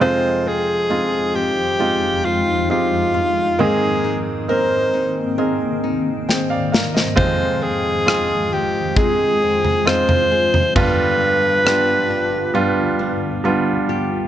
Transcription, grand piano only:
0.00 F2 C3 G#3 C4 D#4 F4
0.90 G#3 C4 D#4 F4
1.79 G#3 C4 D#4 F4
2.70 G#3 C4 D#4 G4
3.59 G#2 D#3 A#3 C4 D#4 G#4
4.48 A#3 C4 D#4 A#4
5.38 A#3 C4 D#4 G#4
6.29 G#4 C5 G5
6.50 D5 F5
6.72 F5
6.94 C5 D#5
7.16 F2 C3 G#3 C4 D#4 F4
8.06 G#3 C4 D#4 F4
8.96 G#3 C4 D#4 G#4
9.85 G#3 C4 D#4 F4
10.76 G2 D3 G3 B3 D4 F4
11.65 G3 B3 D4 F4
12.54 G3 B3 D4 F4
13.44 G3 B3 D4 F4

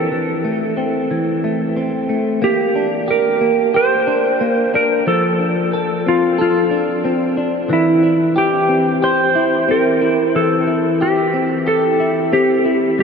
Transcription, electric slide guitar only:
Already playing: A4
2.44 G4
3.11 A#4
3.76 C5
4.75 A#4
5.08 A4
6.08 F4
6.41 F4
7.73 E4
8.38 G4
9.04 C5
9.71 A#4
10.36 A4
11.02 G4
11.68 A4
12.33 G4

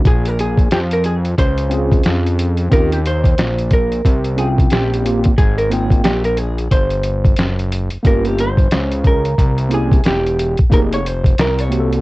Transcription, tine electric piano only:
1.70 C4 C#4 F4 G#4
2.70 C4 C#4 F4 G4
4.37 C4 C#4 F4 G5
5.03 A#3 C4 F4 G4
5.70 A#3 C4 F4 G5
8.03 A#3 C#4 F4 G4
9.69 A#3 C#4 E4 G4
10.70 A#3 D#4 G4 G#4
11.69 A#3 C4 F#4 G4
11.80 A4

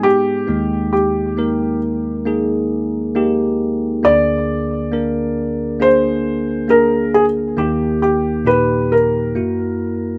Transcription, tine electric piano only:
Already playing: G#2 G#3 B3 D#4 G#4
0.47 D#2 D#3 G#3 A#3 D#4
1.37 A#3 D#4 A#4
2.25 A#3 D#4 G#4
3.15 A#3 D#4 G4
4.03 D2 D3 A#3 D4 G#4
4.92 A#3 D4 A#4
5.80 A#3 D4 G#4
6.68 A#3 D4 G#4
7.57 D#2 D#3 A#3 D#4 G4
8.45 A#2 D#4 G4
9.35 F#2 A#3 E4 F#4

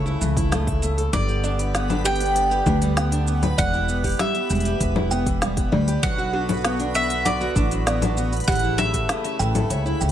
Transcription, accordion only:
Already playing: C#3 A3 E4
1.13 D3 B3 G4
3.58 E3
6.03 D3 F#4
8.48 C#3 A3 E4

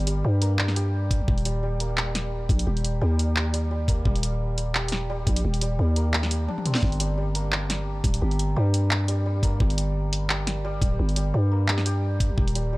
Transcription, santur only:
Already playing: A#3 G4
0.07 G3
0.24 G3
0.42 A#3
0.59 G3
0.76 G4
1.46 G3
1.63 G3
1.80 A#3
1.97 G3
2.67 G4
3.01 G3
3.53 G3
3.71 G3
3.88 A#3
4.06 G3
4.75 G4
5.10 G3
5.62 G3
5.79 G3
5.97 A#3
6.14 G3
6.48 D4
6.66 C4
7.00 G3
7.18 G3
7.35 A#3
7.52 G3
8.21 G4
8.56 G3
9.08 G3
9.26 G3
9.43 A#3
9.60 G3
10.30 G4
10.65 G3
11.17 G3
11.34 G3
11.51 A#3
11.69 G3
11.86 G4
12.55 G3
12.73 G3

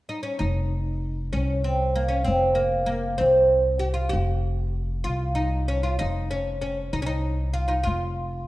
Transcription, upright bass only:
0.40 F1
1.33 C2
2.28 F1
3.21 C2
4.13 F1
5.07 C2
6.01 F1
6.93 C2
7.87 F1

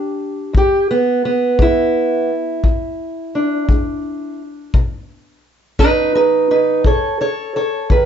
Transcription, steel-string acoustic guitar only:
Already playing: G#3 D4 G4
0.53 E2
0.57 G4
0.91 B3
1.25 B3
1.59 G#3 E4
2.64 E2
3.35 D4
3.69 G#3
4.74 B2
5.79 B3 D#4 B4
6.15 D#4 B4
6.51 D#4 B4
6.86 B2 A4 C#5
7.21 A4 C#5
7.56 A4 C#5
7.91 D#3 B4

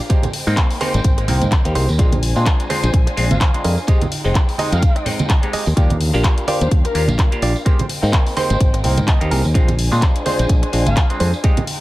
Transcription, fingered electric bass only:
0.47 G#2
0.94 G#1
1.28 C2
1.42 G#2
1.65 D#2
1.76 C2
1.89 D#2
1.99 A#1
2.36 A#2
2.83 A#1
2.94 A#1
3.17 A#1
3.31 G#1
3.65 F2
4.25 F1
4.72 F2
5.54 muted fingered electric bass stroke
5.67 D#2
5.77 D#2
6.14 A#1
6.61 D#2
6.71 D#2
6.95 D#2
7.08 A#1
7.42 A#1
8.03 G#2
8.50 G#1
8.61 G#1
8.84 C2
8.98 G#2
9.21 D#2
9.31 C2
9.45 D#2
9.55 A#1
9.92 A#2
10.39 A#1
10.49 A#1
10.73 A#1
10.87 G#1
11.20 F2

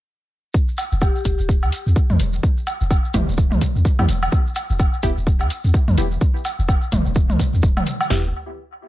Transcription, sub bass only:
0.92 E1
1.25 E1
1.39 D1
1.63 E2
1.86 E2
2.10 E2
2.20 E1
2.81 E1
3.14 E1
3.28 D1
3.52 E2
3.75 E2
3.99 E2
4.09 E1
4.70 E1
5.03 E1
5.17 D1
5.41 E2
5.64 E2
5.88 E2
5.98 E1
6.59 E1
6.92 E1
7.06 D1
7.30 E2
7.53 E2
7.63 D1
8.10 E1

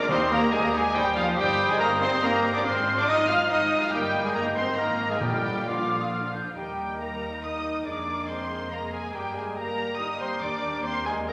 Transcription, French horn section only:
0.09 C4
0.31 A#3
0.52 G#3
0.63 A#3
0.73 G#3
0.95 G3
1.18 F3
1.40 G3
1.70 G#3
1.82 A#3
2.04 C4
2.23 A#3
2.55 D4
2.64 C4
2.96 D4
3.06 D#4
3.28 F4
3.50 D#4
3.81 F4
3.91 G3
4.24 G#3
4.36 A#3
4.58 C4
4.79 A#3
5.11 G#3
5.22 G3
5.67 F3
6.56 G3
6.99 A#3
7.43 D#4
7.86 D4
8.28 C4
8.72 A#3
8.93 G#3
9.15 G3
9.36 G#3
9.58 A#3
9.99 D#4
10.21 C4
10.42 D4
10.85 C4
11.07 G#3
11.27 A#3

